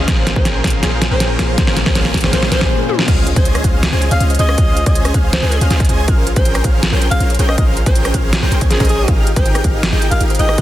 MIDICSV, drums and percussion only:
0, 0, Header, 1, 2, 480
1, 0, Start_track
1, 0, Tempo, 375000
1, 102, Time_signature, 4, 2, 24, 8
1, 13588, End_track
2, 0, Start_track
2, 0, Title_t, "Drums"
2, 100, Note_on_c, 9, 38, 74
2, 100, Note_on_c, 9, 42, 84
2, 102, Note_on_c, 9, 36, 127
2, 228, Note_off_c, 9, 38, 0
2, 228, Note_off_c, 9, 42, 0
2, 230, Note_off_c, 9, 36, 0
2, 342, Note_on_c, 9, 38, 75
2, 342, Note_on_c, 9, 42, 67
2, 464, Note_on_c, 9, 36, 105
2, 470, Note_off_c, 9, 38, 0
2, 470, Note_off_c, 9, 42, 0
2, 580, Note_on_c, 9, 38, 74
2, 580, Note_on_c, 9, 42, 76
2, 592, Note_off_c, 9, 36, 0
2, 708, Note_off_c, 9, 38, 0
2, 708, Note_off_c, 9, 42, 0
2, 822, Note_on_c, 9, 36, 63
2, 822, Note_on_c, 9, 38, 78
2, 822, Note_on_c, 9, 42, 51
2, 862, Note_off_c, 9, 42, 0
2, 862, Note_on_c, 9, 42, 65
2, 900, Note_off_c, 9, 42, 0
2, 900, Note_on_c, 9, 42, 83
2, 950, Note_off_c, 9, 36, 0
2, 950, Note_off_c, 9, 38, 0
2, 1028, Note_off_c, 9, 42, 0
2, 1060, Note_on_c, 9, 38, 81
2, 1060, Note_on_c, 9, 42, 79
2, 1188, Note_off_c, 9, 38, 0
2, 1188, Note_off_c, 9, 42, 0
2, 1300, Note_on_c, 9, 38, 84
2, 1300, Note_on_c, 9, 42, 68
2, 1428, Note_off_c, 9, 38, 0
2, 1428, Note_off_c, 9, 42, 0
2, 1540, Note_on_c, 9, 38, 87
2, 1540, Note_on_c, 9, 42, 83
2, 1668, Note_off_c, 9, 38, 0
2, 1668, Note_off_c, 9, 42, 0
2, 1780, Note_on_c, 9, 38, 89
2, 1780, Note_on_c, 9, 42, 64
2, 1908, Note_off_c, 9, 38, 0
2, 1908, Note_off_c, 9, 42, 0
2, 2021, Note_on_c, 9, 38, 92
2, 2021, Note_on_c, 9, 42, 80
2, 2022, Note_on_c, 9, 36, 127
2, 2143, Note_off_c, 9, 38, 0
2, 2143, Note_on_c, 9, 38, 82
2, 2149, Note_off_c, 9, 42, 0
2, 2150, Note_off_c, 9, 36, 0
2, 2261, Note_off_c, 9, 38, 0
2, 2261, Note_on_c, 9, 38, 93
2, 2261, Note_on_c, 9, 42, 66
2, 2383, Note_off_c, 9, 38, 0
2, 2383, Note_on_c, 9, 38, 83
2, 2385, Note_on_c, 9, 36, 106
2, 2389, Note_off_c, 9, 42, 0
2, 2502, Note_off_c, 9, 38, 0
2, 2502, Note_on_c, 9, 38, 96
2, 2502, Note_on_c, 9, 42, 74
2, 2513, Note_off_c, 9, 36, 0
2, 2625, Note_off_c, 9, 38, 0
2, 2625, Note_on_c, 9, 38, 83
2, 2630, Note_off_c, 9, 42, 0
2, 2742, Note_on_c, 9, 36, 61
2, 2743, Note_off_c, 9, 38, 0
2, 2743, Note_on_c, 9, 38, 97
2, 2743, Note_on_c, 9, 42, 49
2, 2784, Note_off_c, 9, 42, 0
2, 2784, Note_on_c, 9, 42, 64
2, 2823, Note_off_c, 9, 42, 0
2, 2823, Note_on_c, 9, 42, 79
2, 2866, Note_off_c, 9, 38, 0
2, 2866, Note_on_c, 9, 38, 89
2, 2870, Note_off_c, 9, 36, 0
2, 2951, Note_off_c, 9, 42, 0
2, 2983, Note_off_c, 9, 38, 0
2, 2983, Note_on_c, 9, 38, 103
2, 2983, Note_on_c, 9, 42, 84
2, 3105, Note_off_c, 9, 38, 0
2, 3105, Note_on_c, 9, 38, 89
2, 3111, Note_off_c, 9, 42, 0
2, 3223, Note_off_c, 9, 38, 0
2, 3223, Note_on_c, 9, 38, 106
2, 3223, Note_on_c, 9, 42, 69
2, 3344, Note_off_c, 9, 38, 0
2, 3344, Note_on_c, 9, 38, 90
2, 3345, Note_on_c, 9, 36, 65
2, 3351, Note_off_c, 9, 42, 0
2, 3472, Note_off_c, 9, 38, 0
2, 3473, Note_off_c, 9, 36, 0
2, 3702, Note_on_c, 9, 48, 64
2, 3825, Note_on_c, 9, 38, 79
2, 3830, Note_off_c, 9, 48, 0
2, 3942, Note_on_c, 9, 42, 88
2, 3942, Note_on_c, 9, 49, 107
2, 3943, Note_on_c, 9, 36, 122
2, 3953, Note_off_c, 9, 38, 0
2, 4070, Note_off_c, 9, 42, 0
2, 4070, Note_off_c, 9, 49, 0
2, 4071, Note_off_c, 9, 36, 0
2, 4181, Note_on_c, 9, 42, 72
2, 4306, Note_off_c, 9, 42, 0
2, 4306, Note_on_c, 9, 36, 107
2, 4306, Note_on_c, 9, 42, 70
2, 4421, Note_off_c, 9, 42, 0
2, 4421, Note_on_c, 9, 42, 76
2, 4434, Note_off_c, 9, 36, 0
2, 4545, Note_off_c, 9, 42, 0
2, 4545, Note_on_c, 9, 37, 79
2, 4545, Note_on_c, 9, 42, 61
2, 4661, Note_off_c, 9, 42, 0
2, 4661, Note_on_c, 9, 42, 69
2, 4663, Note_on_c, 9, 36, 60
2, 4673, Note_off_c, 9, 37, 0
2, 4789, Note_off_c, 9, 42, 0
2, 4791, Note_off_c, 9, 36, 0
2, 4902, Note_on_c, 9, 38, 122
2, 4902, Note_on_c, 9, 42, 87
2, 5030, Note_off_c, 9, 38, 0
2, 5030, Note_off_c, 9, 42, 0
2, 5142, Note_on_c, 9, 42, 68
2, 5264, Note_off_c, 9, 42, 0
2, 5264, Note_on_c, 9, 42, 70
2, 5382, Note_off_c, 9, 42, 0
2, 5382, Note_on_c, 9, 42, 83
2, 5504, Note_off_c, 9, 42, 0
2, 5504, Note_on_c, 9, 42, 51
2, 5563, Note_off_c, 9, 42, 0
2, 5563, Note_on_c, 9, 42, 67
2, 5621, Note_off_c, 9, 42, 0
2, 5621, Note_on_c, 9, 42, 72
2, 5745, Note_on_c, 9, 37, 83
2, 5749, Note_off_c, 9, 42, 0
2, 5861, Note_on_c, 9, 42, 82
2, 5863, Note_on_c, 9, 36, 126
2, 5873, Note_off_c, 9, 37, 0
2, 5989, Note_off_c, 9, 42, 0
2, 5991, Note_off_c, 9, 36, 0
2, 6101, Note_on_c, 9, 42, 72
2, 6225, Note_off_c, 9, 42, 0
2, 6225, Note_on_c, 9, 42, 70
2, 6227, Note_on_c, 9, 36, 113
2, 6342, Note_off_c, 9, 42, 0
2, 6342, Note_on_c, 9, 42, 80
2, 6355, Note_off_c, 9, 36, 0
2, 6465, Note_off_c, 9, 42, 0
2, 6465, Note_on_c, 9, 37, 76
2, 6465, Note_on_c, 9, 42, 63
2, 6583, Note_off_c, 9, 42, 0
2, 6583, Note_on_c, 9, 42, 71
2, 6584, Note_on_c, 9, 36, 64
2, 6593, Note_off_c, 9, 37, 0
2, 6711, Note_off_c, 9, 42, 0
2, 6712, Note_off_c, 9, 36, 0
2, 6823, Note_on_c, 9, 38, 124
2, 6823, Note_on_c, 9, 42, 88
2, 6951, Note_off_c, 9, 38, 0
2, 6951, Note_off_c, 9, 42, 0
2, 7062, Note_on_c, 9, 42, 71
2, 7185, Note_off_c, 9, 42, 0
2, 7185, Note_on_c, 9, 42, 68
2, 7302, Note_off_c, 9, 42, 0
2, 7302, Note_on_c, 9, 38, 41
2, 7302, Note_on_c, 9, 42, 86
2, 7425, Note_off_c, 9, 42, 0
2, 7425, Note_on_c, 9, 42, 53
2, 7427, Note_on_c, 9, 36, 112
2, 7430, Note_off_c, 9, 38, 0
2, 7484, Note_off_c, 9, 42, 0
2, 7484, Note_on_c, 9, 42, 71
2, 7541, Note_off_c, 9, 42, 0
2, 7541, Note_on_c, 9, 42, 69
2, 7555, Note_off_c, 9, 36, 0
2, 7669, Note_off_c, 9, 42, 0
2, 7781, Note_on_c, 9, 42, 85
2, 7784, Note_on_c, 9, 36, 127
2, 7909, Note_off_c, 9, 42, 0
2, 7912, Note_off_c, 9, 36, 0
2, 8022, Note_on_c, 9, 42, 71
2, 8144, Note_off_c, 9, 42, 0
2, 8144, Note_on_c, 9, 42, 69
2, 8147, Note_on_c, 9, 36, 111
2, 8261, Note_off_c, 9, 42, 0
2, 8261, Note_on_c, 9, 42, 80
2, 8275, Note_off_c, 9, 36, 0
2, 8384, Note_off_c, 9, 42, 0
2, 8384, Note_on_c, 9, 37, 76
2, 8384, Note_on_c, 9, 42, 65
2, 8502, Note_off_c, 9, 42, 0
2, 8502, Note_on_c, 9, 42, 72
2, 8504, Note_on_c, 9, 36, 66
2, 8512, Note_off_c, 9, 37, 0
2, 8630, Note_off_c, 9, 42, 0
2, 8632, Note_off_c, 9, 36, 0
2, 8741, Note_on_c, 9, 38, 127
2, 8741, Note_on_c, 9, 42, 81
2, 8869, Note_off_c, 9, 38, 0
2, 8869, Note_off_c, 9, 42, 0
2, 8981, Note_on_c, 9, 42, 67
2, 9105, Note_off_c, 9, 42, 0
2, 9105, Note_on_c, 9, 42, 69
2, 9222, Note_off_c, 9, 42, 0
2, 9222, Note_on_c, 9, 42, 86
2, 9344, Note_off_c, 9, 42, 0
2, 9344, Note_on_c, 9, 42, 52
2, 9402, Note_off_c, 9, 42, 0
2, 9402, Note_on_c, 9, 42, 67
2, 9462, Note_off_c, 9, 42, 0
2, 9462, Note_on_c, 9, 42, 70
2, 9584, Note_on_c, 9, 37, 81
2, 9590, Note_off_c, 9, 42, 0
2, 9702, Note_on_c, 9, 42, 81
2, 9703, Note_on_c, 9, 36, 126
2, 9712, Note_off_c, 9, 37, 0
2, 9830, Note_off_c, 9, 42, 0
2, 9831, Note_off_c, 9, 36, 0
2, 9942, Note_on_c, 9, 42, 66
2, 10065, Note_off_c, 9, 42, 0
2, 10065, Note_on_c, 9, 42, 69
2, 10066, Note_on_c, 9, 36, 109
2, 10182, Note_off_c, 9, 42, 0
2, 10182, Note_on_c, 9, 42, 75
2, 10194, Note_off_c, 9, 36, 0
2, 10304, Note_off_c, 9, 42, 0
2, 10304, Note_on_c, 9, 37, 74
2, 10304, Note_on_c, 9, 42, 58
2, 10420, Note_off_c, 9, 42, 0
2, 10420, Note_on_c, 9, 42, 67
2, 10423, Note_on_c, 9, 36, 61
2, 10432, Note_off_c, 9, 37, 0
2, 10548, Note_off_c, 9, 42, 0
2, 10551, Note_off_c, 9, 36, 0
2, 10660, Note_on_c, 9, 38, 125
2, 10660, Note_on_c, 9, 42, 79
2, 10788, Note_off_c, 9, 38, 0
2, 10788, Note_off_c, 9, 42, 0
2, 10902, Note_on_c, 9, 42, 68
2, 11023, Note_off_c, 9, 42, 0
2, 11023, Note_on_c, 9, 42, 66
2, 11026, Note_on_c, 9, 36, 64
2, 11143, Note_off_c, 9, 42, 0
2, 11143, Note_on_c, 9, 38, 38
2, 11143, Note_on_c, 9, 42, 83
2, 11154, Note_off_c, 9, 36, 0
2, 11267, Note_off_c, 9, 42, 0
2, 11267, Note_on_c, 9, 36, 111
2, 11267, Note_on_c, 9, 42, 50
2, 11271, Note_off_c, 9, 38, 0
2, 11324, Note_off_c, 9, 42, 0
2, 11324, Note_on_c, 9, 42, 63
2, 11382, Note_off_c, 9, 42, 0
2, 11382, Note_on_c, 9, 42, 66
2, 11395, Note_off_c, 9, 36, 0
2, 11510, Note_off_c, 9, 42, 0
2, 11622, Note_on_c, 9, 42, 77
2, 11624, Note_on_c, 9, 36, 123
2, 11750, Note_off_c, 9, 42, 0
2, 11752, Note_off_c, 9, 36, 0
2, 11863, Note_on_c, 9, 42, 67
2, 11986, Note_off_c, 9, 42, 0
2, 11986, Note_on_c, 9, 42, 66
2, 11987, Note_on_c, 9, 36, 108
2, 12103, Note_off_c, 9, 42, 0
2, 12103, Note_on_c, 9, 42, 70
2, 12115, Note_off_c, 9, 36, 0
2, 12225, Note_off_c, 9, 42, 0
2, 12225, Note_on_c, 9, 37, 79
2, 12225, Note_on_c, 9, 42, 60
2, 12342, Note_off_c, 9, 42, 0
2, 12342, Note_on_c, 9, 42, 66
2, 12344, Note_on_c, 9, 36, 62
2, 12353, Note_off_c, 9, 37, 0
2, 12470, Note_off_c, 9, 42, 0
2, 12472, Note_off_c, 9, 36, 0
2, 12584, Note_on_c, 9, 38, 126
2, 12584, Note_on_c, 9, 42, 80
2, 12712, Note_off_c, 9, 38, 0
2, 12712, Note_off_c, 9, 42, 0
2, 12824, Note_on_c, 9, 42, 67
2, 12947, Note_off_c, 9, 42, 0
2, 12947, Note_on_c, 9, 42, 67
2, 13063, Note_off_c, 9, 42, 0
2, 13063, Note_on_c, 9, 42, 78
2, 13186, Note_off_c, 9, 42, 0
2, 13186, Note_on_c, 9, 42, 49
2, 13244, Note_off_c, 9, 42, 0
2, 13244, Note_on_c, 9, 42, 63
2, 13304, Note_off_c, 9, 42, 0
2, 13304, Note_on_c, 9, 42, 63
2, 13425, Note_on_c, 9, 37, 80
2, 13432, Note_off_c, 9, 42, 0
2, 13543, Note_on_c, 9, 42, 78
2, 13545, Note_on_c, 9, 36, 119
2, 13553, Note_off_c, 9, 37, 0
2, 13588, Note_off_c, 9, 36, 0
2, 13588, Note_off_c, 9, 42, 0
2, 13588, End_track
0, 0, End_of_file